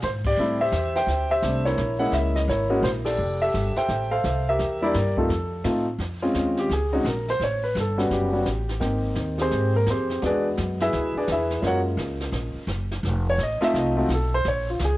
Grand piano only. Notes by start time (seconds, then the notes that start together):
0.04 C5
0.26 G4 D5
0.39 G3 A3 C4 E4
0.61 G4 C5 E5
0.96 C5 E5 G5
1.31 G4 C5 E5
1.43 G3 A3 C4 D4
1.65 E4 A#4 C#5
1.99 G#3 A#3 C#4 E4 F#5
2.14 E5
2.36 D#5
2.49 E4 A#4 C#5
2.70 G#3 A#3 C#4 F#4
2.84 C5
3.05 G4 A4 D5
3.42 G4 A4 E5
3.77 C5 E5 G5
4.11 A4 C5 F5
4.49 G4 A#4 E5
4.81 G3 A#3 D4 E4 G4 A#4 D5
5.17 A3 C4 D#4 F4 A4
5.64 A3 C4 D#4 F4
6.22 G#3 C4 C#4 F4
6.59 G4
6.73 G#4
6.92 G#3 C4 C#4 D#4 F#4
7.08 A#4
7.30 C5
7.44 C#5
7.64 B4
7.80 A4
7.98 G3 B3 C#4 F#4
8.13 G4
8.33 G3 B3 C#4 F#4
8.80 A#3 C4 D#4 G5
9.41 C4 G4 G#4 C5
9.76 A#3 A#4
9.90 C4 G4 G#4 C5
10.22 G#3 B3 D4 F#4 B4 D5
10.26 G#4
10.81 E4 G#4 B4 E5
11.17 D4 G#4 B4 D5
11.32 E4 G#4 B4 E5
11.61 G#3 A#3 C#4 F4
11.67 F#4 A#4 C#5 F#5
13.30 C#5
13.43 D#5
13.61 A3 C4 D#4 F4 E5
13.79 D#5
13.96 A3 C4 D#4 F4 F#4
14.14 A4
14.34 C5
14.48 C#5
14.70 F4
14.85 G#4